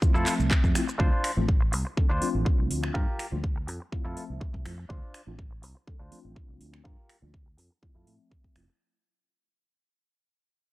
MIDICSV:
0, 0, Header, 1, 7, 480
1, 0, Start_track
1, 0, Key_signature, -1, "minor"
1, 0, Tempo, 487805
1, 981, Time_signature, 4, 2, 24, 8
1, 10551, End_track
2, 0, Start_track
2, 0, Title_t, "Clean electric guitar"
2, 0, Program_c, 0, 27
2, 142, Note_on_c, 0, 64, 105
2, 150, Note_on_c, 0, 65, 98
2, 157, Note_on_c, 0, 69, 116
2, 321, Note_off_c, 0, 64, 0
2, 325, Note_off_c, 0, 65, 0
2, 329, Note_off_c, 0, 69, 0
2, 973, Note_on_c, 0, 62, 105
2, 980, Note_on_c, 0, 65, 104
2, 989, Note_on_c, 0, 72, 124
2, 1280, Note_off_c, 0, 62, 0
2, 1284, Note_off_c, 0, 65, 0
2, 1288, Note_off_c, 0, 72, 0
2, 2061, Note_on_c, 0, 62, 101
2, 2069, Note_on_c, 0, 65, 97
2, 2077, Note_on_c, 0, 72, 123
2, 2241, Note_off_c, 0, 62, 0
2, 2245, Note_off_c, 0, 65, 0
2, 2249, Note_off_c, 0, 72, 0
2, 2895, Note_on_c, 0, 65, 108
2, 2903, Note_on_c, 0, 67, 105
2, 2911, Note_on_c, 0, 70, 119
2, 3201, Note_off_c, 0, 65, 0
2, 3205, Note_off_c, 0, 67, 0
2, 3209, Note_off_c, 0, 70, 0
2, 3981, Note_on_c, 0, 64, 102
2, 3989, Note_on_c, 0, 65, 99
2, 3997, Note_on_c, 0, 69, 117
2, 4161, Note_off_c, 0, 64, 0
2, 4165, Note_off_c, 0, 65, 0
2, 4169, Note_off_c, 0, 69, 0
2, 4812, Note_on_c, 0, 62, 109
2, 4821, Note_on_c, 0, 65, 102
2, 4828, Note_on_c, 0, 72, 122
2, 5120, Note_off_c, 0, 62, 0
2, 5124, Note_off_c, 0, 65, 0
2, 5128, Note_off_c, 0, 72, 0
2, 5899, Note_on_c, 0, 62, 105
2, 5907, Note_on_c, 0, 65, 99
2, 5915, Note_on_c, 0, 72, 116
2, 6080, Note_off_c, 0, 62, 0
2, 6084, Note_off_c, 0, 65, 0
2, 6088, Note_off_c, 0, 72, 0
2, 6734, Note_on_c, 0, 65, 105
2, 6742, Note_on_c, 0, 67, 97
2, 6751, Note_on_c, 0, 70, 120
2, 7041, Note_off_c, 0, 65, 0
2, 7044, Note_off_c, 0, 67, 0
2, 7049, Note_off_c, 0, 70, 0
2, 7821, Note_on_c, 0, 64, 99
2, 7829, Note_on_c, 0, 65, 95
2, 7837, Note_on_c, 0, 69, 115
2, 8001, Note_off_c, 0, 64, 0
2, 8005, Note_off_c, 0, 65, 0
2, 8009, Note_off_c, 0, 69, 0
2, 10551, End_track
3, 0, Start_track
3, 0, Title_t, "Tine electric piano"
3, 0, Program_c, 1, 4
3, 18, Note_on_c, 1, 53, 92
3, 20, Note_on_c, 1, 57, 82
3, 22, Note_on_c, 1, 60, 82
3, 24, Note_on_c, 1, 64, 82
3, 26, Note_on_c, 1, 65, 98
3, 232, Note_off_c, 1, 53, 0
3, 233, Note_off_c, 1, 57, 0
3, 234, Note_off_c, 1, 60, 0
3, 235, Note_off_c, 1, 64, 0
3, 236, Note_off_c, 1, 65, 0
3, 259, Note_on_c, 1, 53, 81
3, 260, Note_on_c, 1, 57, 71
3, 263, Note_on_c, 1, 60, 73
3, 265, Note_on_c, 1, 76, 74
3, 713, Note_off_c, 1, 53, 0
3, 713, Note_off_c, 1, 57, 0
3, 714, Note_off_c, 1, 60, 0
3, 715, Note_off_c, 1, 76, 0
3, 737, Note_on_c, 1, 53, 76
3, 738, Note_on_c, 1, 57, 68
3, 741, Note_on_c, 1, 60, 69
3, 743, Note_on_c, 1, 64, 69
3, 745, Note_on_c, 1, 65, 80
3, 813, Note_off_c, 1, 53, 0
3, 814, Note_off_c, 1, 57, 0
3, 815, Note_off_c, 1, 60, 0
3, 816, Note_off_c, 1, 64, 0
3, 817, Note_off_c, 1, 65, 0
3, 977, Note_on_c, 1, 53, 98
3, 980, Note_on_c, 1, 57, 87
3, 981, Note_on_c, 1, 60, 88
3, 984, Note_on_c, 1, 62, 88
3, 985, Note_on_c, 1, 65, 107
3, 1053, Note_off_c, 1, 53, 0
3, 1054, Note_off_c, 1, 57, 0
3, 1055, Note_off_c, 1, 60, 0
3, 1056, Note_off_c, 1, 62, 0
3, 1057, Note_off_c, 1, 65, 0
3, 1344, Note_on_c, 1, 53, 97
3, 1346, Note_on_c, 1, 57, 90
3, 1348, Note_on_c, 1, 60, 90
3, 1349, Note_on_c, 1, 62, 87
3, 1351, Note_on_c, 1, 65, 106
3, 1412, Note_off_c, 1, 53, 0
3, 1413, Note_off_c, 1, 57, 0
3, 1414, Note_off_c, 1, 60, 0
3, 1414, Note_off_c, 1, 62, 0
3, 1415, Note_off_c, 1, 65, 0
3, 1937, Note_on_c, 1, 53, 82
3, 1939, Note_on_c, 1, 57, 73
3, 1941, Note_on_c, 1, 60, 74
3, 1942, Note_on_c, 1, 62, 73
3, 1944, Note_on_c, 1, 69, 88
3, 2013, Note_off_c, 1, 53, 0
3, 2014, Note_off_c, 1, 57, 0
3, 2015, Note_off_c, 1, 60, 0
3, 2015, Note_off_c, 1, 62, 0
3, 2017, Note_off_c, 1, 69, 0
3, 2174, Note_on_c, 1, 53, 95
3, 2178, Note_on_c, 1, 57, 88
3, 2182, Note_on_c, 1, 60, 86
3, 2186, Note_on_c, 1, 62, 86
3, 2190, Note_on_c, 1, 65, 103
3, 2870, Note_off_c, 1, 53, 0
3, 2872, Note_off_c, 1, 57, 0
3, 2874, Note_off_c, 1, 60, 0
3, 2876, Note_off_c, 1, 62, 0
3, 2878, Note_off_c, 1, 65, 0
3, 2899, Note_on_c, 1, 53, 74
3, 2901, Note_on_c, 1, 55, 73
3, 2903, Note_on_c, 1, 58, 73
3, 2905, Note_on_c, 1, 62, 70
3, 2908, Note_on_c, 1, 65, 81
3, 2974, Note_off_c, 1, 53, 0
3, 2975, Note_off_c, 1, 55, 0
3, 2976, Note_off_c, 1, 58, 0
3, 2977, Note_off_c, 1, 62, 0
3, 2978, Note_off_c, 1, 65, 0
3, 3263, Note_on_c, 1, 53, 85
3, 3265, Note_on_c, 1, 55, 77
3, 3266, Note_on_c, 1, 58, 79
3, 3268, Note_on_c, 1, 62, 75
3, 3270, Note_on_c, 1, 65, 96
3, 3332, Note_off_c, 1, 53, 0
3, 3332, Note_off_c, 1, 55, 0
3, 3333, Note_off_c, 1, 58, 0
3, 3334, Note_off_c, 1, 62, 0
3, 3335, Note_off_c, 1, 65, 0
3, 3857, Note_on_c, 1, 53, 91
3, 3860, Note_on_c, 1, 57, 83
3, 3861, Note_on_c, 1, 60, 77
3, 3863, Note_on_c, 1, 64, 81
3, 3865, Note_on_c, 1, 65, 100
3, 4072, Note_off_c, 1, 53, 0
3, 4073, Note_off_c, 1, 57, 0
3, 4074, Note_off_c, 1, 60, 0
3, 4075, Note_off_c, 1, 64, 0
3, 4076, Note_off_c, 1, 65, 0
3, 4098, Note_on_c, 1, 53, 78
3, 4099, Note_on_c, 1, 57, 73
3, 4101, Note_on_c, 1, 60, 69
3, 4103, Note_on_c, 1, 76, 73
3, 4552, Note_off_c, 1, 53, 0
3, 4553, Note_off_c, 1, 57, 0
3, 4554, Note_off_c, 1, 60, 0
3, 4555, Note_off_c, 1, 76, 0
3, 4577, Note_on_c, 1, 53, 73
3, 4579, Note_on_c, 1, 57, 69
3, 4581, Note_on_c, 1, 60, 68
3, 4582, Note_on_c, 1, 64, 66
3, 4584, Note_on_c, 1, 65, 86
3, 4653, Note_off_c, 1, 53, 0
3, 4654, Note_off_c, 1, 57, 0
3, 4655, Note_off_c, 1, 60, 0
3, 4656, Note_off_c, 1, 64, 0
3, 4657, Note_off_c, 1, 65, 0
3, 4817, Note_on_c, 1, 53, 98
3, 4818, Note_on_c, 1, 57, 90
3, 4820, Note_on_c, 1, 60, 86
3, 4822, Note_on_c, 1, 62, 89
3, 4824, Note_on_c, 1, 65, 111
3, 4893, Note_off_c, 1, 53, 0
3, 4894, Note_off_c, 1, 57, 0
3, 4895, Note_off_c, 1, 60, 0
3, 4896, Note_off_c, 1, 62, 0
3, 4896, Note_off_c, 1, 65, 0
3, 5182, Note_on_c, 1, 53, 101
3, 5185, Note_on_c, 1, 57, 89
3, 5187, Note_on_c, 1, 60, 91
3, 5189, Note_on_c, 1, 62, 87
3, 5191, Note_on_c, 1, 65, 107
3, 5251, Note_off_c, 1, 53, 0
3, 5252, Note_off_c, 1, 57, 0
3, 5253, Note_off_c, 1, 60, 0
3, 5254, Note_off_c, 1, 62, 0
3, 5255, Note_off_c, 1, 65, 0
3, 5777, Note_on_c, 1, 53, 82
3, 5779, Note_on_c, 1, 57, 72
3, 5781, Note_on_c, 1, 60, 73
3, 5783, Note_on_c, 1, 62, 73
3, 5785, Note_on_c, 1, 69, 84
3, 5853, Note_off_c, 1, 53, 0
3, 5854, Note_off_c, 1, 57, 0
3, 5855, Note_off_c, 1, 60, 0
3, 5856, Note_off_c, 1, 62, 0
3, 5857, Note_off_c, 1, 69, 0
3, 6013, Note_on_c, 1, 53, 96
3, 6016, Note_on_c, 1, 57, 83
3, 6021, Note_on_c, 1, 60, 89
3, 6024, Note_on_c, 1, 62, 87
3, 6028, Note_on_c, 1, 65, 103
3, 6710, Note_off_c, 1, 53, 0
3, 6711, Note_off_c, 1, 57, 0
3, 6714, Note_off_c, 1, 60, 0
3, 6715, Note_off_c, 1, 62, 0
3, 6717, Note_off_c, 1, 65, 0
3, 6736, Note_on_c, 1, 53, 73
3, 6738, Note_on_c, 1, 55, 69
3, 6741, Note_on_c, 1, 62, 69
3, 6744, Note_on_c, 1, 65, 84
3, 6812, Note_off_c, 1, 53, 0
3, 6813, Note_off_c, 1, 55, 0
3, 6815, Note_off_c, 1, 62, 0
3, 6817, Note_off_c, 1, 65, 0
3, 7103, Note_on_c, 1, 53, 82
3, 7105, Note_on_c, 1, 55, 78
3, 7107, Note_on_c, 1, 58, 79
3, 7109, Note_on_c, 1, 62, 75
3, 7110, Note_on_c, 1, 65, 94
3, 7171, Note_off_c, 1, 53, 0
3, 7172, Note_off_c, 1, 55, 0
3, 7174, Note_off_c, 1, 58, 0
3, 7174, Note_off_c, 1, 62, 0
3, 7175, Note_off_c, 1, 65, 0
3, 7697, Note_on_c, 1, 53, 87
3, 7700, Note_on_c, 1, 57, 78
3, 7702, Note_on_c, 1, 60, 80
3, 7704, Note_on_c, 1, 64, 78
3, 7706, Note_on_c, 1, 65, 97
3, 7912, Note_off_c, 1, 53, 0
3, 7913, Note_off_c, 1, 57, 0
3, 7914, Note_off_c, 1, 60, 0
3, 7915, Note_off_c, 1, 64, 0
3, 7916, Note_off_c, 1, 65, 0
3, 7938, Note_on_c, 1, 53, 78
3, 7940, Note_on_c, 1, 57, 75
3, 7942, Note_on_c, 1, 60, 72
3, 7944, Note_on_c, 1, 76, 70
3, 8392, Note_off_c, 1, 53, 0
3, 8393, Note_off_c, 1, 57, 0
3, 8394, Note_off_c, 1, 60, 0
3, 8395, Note_off_c, 1, 76, 0
3, 8419, Note_on_c, 1, 53, 74
3, 8421, Note_on_c, 1, 57, 67
3, 8422, Note_on_c, 1, 60, 68
3, 8425, Note_on_c, 1, 64, 65
3, 8426, Note_on_c, 1, 65, 78
3, 8494, Note_off_c, 1, 53, 0
3, 8495, Note_off_c, 1, 57, 0
3, 8496, Note_off_c, 1, 60, 0
3, 8497, Note_off_c, 1, 64, 0
3, 8498, Note_off_c, 1, 65, 0
3, 10551, End_track
4, 0, Start_track
4, 0, Title_t, "Fingered electric bass"
4, 0, Program_c, 2, 33
4, 147, Note_on_c, 2, 41, 98
4, 235, Note_off_c, 2, 41, 0
4, 388, Note_on_c, 2, 36, 83
4, 475, Note_off_c, 2, 36, 0
4, 628, Note_on_c, 2, 41, 80
4, 716, Note_off_c, 2, 41, 0
4, 981, Note_on_c, 2, 38, 97
4, 1079, Note_off_c, 2, 38, 0
4, 1349, Note_on_c, 2, 33, 98
4, 1703, Note_off_c, 2, 33, 0
4, 1703, Note_on_c, 2, 36, 82
4, 1800, Note_off_c, 2, 36, 0
4, 2067, Note_on_c, 2, 38, 100
4, 2155, Note_off_c, 2, 38, 0
4, 2309, Note_on_c, 2, 33, 85
4, 2396, Note_off_c, 2, 33, 0
4, 2549, Note_on_c, 2, 36, 86
4, 2636, Note_off_c, 2, 36, 0
4, 2662, Note_on_c, 2, 38, 99
4, 2851, Note_off_c, 2, 38, 0
4, 2902, Note_on_c, 2, 43, 99
4, 3000, Note_off_c, 2, 43, 0
4, 3268, Note_on_c, 2, 38, 95
4, 3623, Note_off_c, 2, 38, 0
4, 3623, Note_on_c, 2, 41, 84
4, 3720, Note_off_c, 2, 41, 0
4, 3989, Note_on_c, 2, 41, 100
4, 4076, Note_off_c, 2, 41, 0
4, 4229, Note_on_c, 2, 36, 82
4, 4316, Note_off_c, 2, 36, 0
4, 4468, Note_on_c, 2, 36, 85
4, 4555, Note_off_c, 2, 36, 0
4, 4581, Note_on_c, 2, 41, 98
4, 4770, Note_off_c, 2, 41, 0
4, 4820, Note_on_c, 2, 38, 97
4, 4919, Note_off_c, 2, 38, 0
4, 5186, Note_on_c, 2, 33, 96
4, 5539, Note_off_c, 2, 33, 0
4, 5539, Note_on_c, 2, 36, 82
4, 5638, Note_off_c, 2, 36, 0
4, 5907, Note_on_c, 2, 38, 101
4, 5995, Note_off_c, 2, 38, 0
4, 6147, Note_on_c, 2, 33, 83
4, 6235, Note_off_c, 2, 33, 0
4, 6388, Note_on_c, 2, 36, 85
4, 6475, Note_off_c, 2, 36, 0
4, 6500, Note_on_c, 2, 38, 97
4, 6689, Note_off_c, 2, 38, 0
4, 6741, Note_on_c, 2, 43, 98
4, 6839, Note_off_c, 2, 43, 0
4, 7107, Note_on_c, 2, 38, 97
4, 7461, Note_off_c, 2, 38, 0
4, 7461, Note_on_c, 2, 41, 85
4, 7559, Note_off_c, 2, 41, 0
4, 7828, Note_on_c, 2, 41, 102
4, 7916, Note_off_c, 2, 41, 0
4, 7940, Note_on_c, 2, 45, 101
4, 8039, Note_off_c, 2, 45, 0
4, 8422, Note_on_c, 2, 29, 74
4, 8520, Note_off_c, 2, 29, 0
4, 10551, End_track
5, 0, Start_track
5, 0, Title_t, "Muted clean electric guitar strokes"
5, 493, Note_on_c, 9, 29, 82
5, 591, Note_off_c, 9, 29, 0
5, 620, Note_on_c, 9, 29, 31
5, 718, Note_off_c, 9, 29, 0
5, 861, Note_on_c, 9, 29, 31
5, 959, Note_off_c, 9, 29, 0
5, 1580, Note_on_c, 9, 29, 85
5, 1679, Note_off_c, 9, 29, 0
5, 1694, Note_on_c, 9, 29, 85
5, 1793, Note_off_c, 9, 29, 0
5, 1821, Note_on_c, 9, 29, 33
5, 1919, Note_off_c, 9, 29, 0
5, 2414, Note_on_c, 9, 29, 80
5, 2512, Note_off_c, 9, 29, 0
5, 2542, Note_on_c, 9, 29, 31
5, 2640, Note_off_c, 9, 29, 0
5, 2782, Note_on_c, 9, 29, 33
5, 2881, Note_off_c, 9, 29, 0
5, 3501, Note_on_c, 9, 29, 81
5, 3600, Note_off_c, 9, 29, 0
5, 3615, Note_on_c, 9, 29, 90
5, 3713, Note_off_c, 9, 29, 0
5, 3742, Note_on_c, 9, 29, 34
5, 3840, Note_off_c, 9, 29, 0
5, 4335, Note_on_c, 9, 29, 81
5, 4433, Note_off_c, 9, 29, 0
5, 4460, Note_on_c, 9, 29, 31
5, 4558, Note_off_c, 9, 29, 0
5, 4702, Note_on_c, 9, 29, 33
5, 4800, Note_off_c, 9, 29, 0
5, 5419, Note_on_c, 9, 29, 83
5, 5518, Note_off_c, 9, 29, 0
5, 5533, Note_on_c, 9, 29, 84
5, 5631, Note_off_c, 9, 29, 0
5, 5660, Note_on_c, 9, 29, 33
5, 5758, Note_off_c, 9, 29, 0
5, 6254, Note_on_c, 9, 29, 81
5, 6352, Note_off_c, 9, 29, 0
5, 6381, Note_on_c, 9, 29, 32
5, 6479, Note_off_c, 9, 29, 0
5, 6621, Note_on_c, 9, 29, 32
5, 6719, Note_off_c, 9, 29, 0
5, 7341, Note_on_c, 9, 29, 85
5, 7439, Note_off_c, 9, 29, 0
5, 7454, Note_on_c, 9, 29, 87
5, 7552, Note_off_c, 9, 29, 0
5, 7582, Note_on_c, 9, 29, 33
5, 7680, Note_off_c, 9, 29, 0
5, 8174, Note_on_c, 9, 29, 76
5, 8272, Note_off_c, 9, 29, 0
5, 8300, Note_on_c, 9, 29, 31
5, 8398, Note_off_c, 9, 29, 0
5, 8540, Note_on_c, 9, 29, 32
5, 8638, Note_off_c, 9, 29, 0
5, 10551, End_track
6, 0, Start_track
6, 0, Title_t, "Muted fingered electric bass strokes"
6, 1942, Note_on_c, 9, 29, 42
6, 2040, Note_off_c, 9, 29, 0
6, 5780, Note_on_c, 9, 29, 43
6, 5879, Note_off_c, 9, 29, 0
6, 10551, End_track
7, 0, Start_track
7, 0, Title_t, "Drums"
7, 21, Note_on_c, 9, 36, 115
7, 24, Note_on_c, 9, 82, 43
7, 119, Note_off_c, 9, 36, 0
7, 123, Note_off_c, 9, 82, 0
7, 152, Note_on_c, 9, 82, 20
7, 250, Note_off_c, 9, 82, 0
7, 260, Note_on_c, 9, 39, 57
7, 260, Note_on_c, 9, 46, 105
7, 265, Note_on_c, 9, 82, 72
7, 358, Note_off_c, 9, 46, 0
7, 359, Note_off_c, 9, 39, 0
7, 363, Note_off_c, 9, 82, 0
7, 393, Note_on_c, 9, 82, 30
7, 491, Note_off_c, 9, 82, 0
7, 501, Note_on_c, 9, 36, 126
7, 502, Note_on_c, 9, 39, 109
7, 507, Note_on_c, 9, 82, 41
7, 600, Note_off_c, 9, 36, 0
7, 601, Note_off_c, 9, 39, 0
7, 605, Note_off_c, 9, 82, 0
7, 628, Note_on_c, 9, 36, 60
7, 634, Note_on_c, 9, 82, 22
7, 726, Note_off_c, 9, 36, 0
7, 732, Note_off_c, 9, 82, 0
7, 741, Note_on_c, 9, 26, 78
7, 741, Note_on_c, 9, 46, 107
7, 746, Note_on_c, 9, 82, 72
7, 839, Note_off_c, 9, 26, 0
7, 839, Note_off_c, 9, 46, 0
7, 844, Note_off_c, 9, 82, 0
7, 872, Note_on_c, 9, 82, 33
7, 971, Note_off_c, 9, 82, 0
7, 982, Note_on_c, 9, 36, 112
7, 1080, Note_off_c, 9, 36, 0
7, 1221, Note_on_c, 9, 26, 72
7, 1221, Note_on_c, 9, 46, 103
7, 1319, Note_off_c, 9, 26, 0
7, 1319, Note_off_c, 9, 46, 0
7, 1461, Note_on_c, 9, 36, 114
7, 1560, Note_off_c, 9, 36, 0
7, 1701, Note_on_c, 9, 46, 107
7, 1799, Note_off_c, 9, 46, 0
7, 1942, Note_on_c, 9, 36, 115
7, 2040, Note_off_c, 9, 36, 0
7, 2182, Note_on_c, 9, 46, 97
7, 2280, Note_off_c, 9, 46, 0
7, 2422, Note_on_c, 9, 36, 119
7, 2520, Note_off_c, 9, 36, 0
7, 2663, Note_on_c, 9, 46, 107
7, 2761, Note_off_c, 9, 46, 0
7, 2790, Note_on_c, 9, 26, 78
7, 2888, Note_off_c, 9, 26, 0
7, 2902, Note_on_c, 9, 36, 109
7, 3000, Note_off_c, 9, 36, 0
7, 3142, Note_on_c, 9, 26, 68
7, 3142, Note_on_c, 9, 46, 105
7, 3241, Note_off_c, 9, 26, 0
7, 3241, Note_off_c, 9, 46, 0
7, 3382, Note_on_c, 9, 36, 105
7, 3480, Note_off_c, 9, 36, 0
7, 3622, Note_on_c, 9, 46, 99
7, 3721, Note_off_c, 9, 46, 0
7, 3861, Note_on_c, 9, 36, 103
7, 3960, Note_off_c, 9, 36, 0
7, 4102, Note_on_c, 9, 46, 93
7, 4200, Note_off_c, 9, 46, 0
7, 4341, Note_on_c, 9, 36, 112
7, 4440, Note_off_c, 9, 36, 0
7, 4468, Note_on_c, 9, 36, 56
7, 4566, Note_off_c, 9, 36, 0
7, 4581, Note_on_c, 9, 26, 82
7, 4581, Note_on_c, 9, 46, 98
7, 4679, Note_off_c, 9, 26, 0
7, 4679, Note_off_c, 9, 46, 0
7, 4821, Note_on_c, 9, 36, 110
7, 4919, Note_off_c, 9, 36, 0
7, 5061, Note_on_c, 9, 26, 67
7, 5061, Note_on_c, 9, 46, 99
7, 5159, Note_off_c, 9, 26, 0
7, 5159, Note_off_c, 9, 46, 0
7, 5301, Note_on_c, 9, 36, 107
7, 5399, Note_off_c, 9, 36, 0
7, 5540, Note_on_c, 9, 46, 97
7, 5639, Note_off_c, 9, 46, 0
7, 5781, Note_on_c, 9, 36, 107
7, 5879, Note_off_c, 9, 36, 0
7, 6021, Note_on_c, 9, 46, 94
7, 6120, Note_off_c, 9, 46, 0
7, 6261, Note_on_c, 9, 36, 111
7, 6359, Note_off_c, 9, 36, 0
7, 6501, Note_on_c, 9, 46, 94
7, 6599, Note_off_c, 9, 46, 0
7, 6628, Note_on_c, 9, 26, 78
7, 6726, Note_off_c, 9, 26, 0
7, 6741, Note_on_c, 9, 36, 107
7, 6840, Note_off_c, 9, 36, 0
7, 6981, Note_on_c, 9, 26, 66
7, 6981, Note_on_c, 9, 46, 105
7, 7079, Note_off_c, 9, 26, 0
7, 7079, Note_off_c, 9, 46, 0
7, 7221, Note_on_c, 9, 36, 110
7, 7320, Note_off_c, 9, 36, 0
7, 7462, Note_on_c, 9, 46, 101
7, 7560, Note_off_c, 9, 46, 0
7, 7701, Note_on_c, 9, 36, 107
7, 7800, Note_off_c, 9, 36, 0
7, 7943, Note_on_c, 9, 46, 92
7, 8041, Note_off_c, 9, 46, 0
7, 8182, Note_on_c, 9, 36, 107
7, 8280, Note_off_c, 9, 36, 0
7, 8308, Note_on_c, 9, 36, 55
7, 8407, Note_off_c, 9, 36, 0
7, 8420, Note_on_c, 9, 26, 76
7, 8420, Note_on_c, 9, 46, 101
7, 8519, Note_off_c, 9, 26, 0
7, 8519, Note_off_c, 9, 46, 0
7, 10551, End_track
0, 0, End_of_file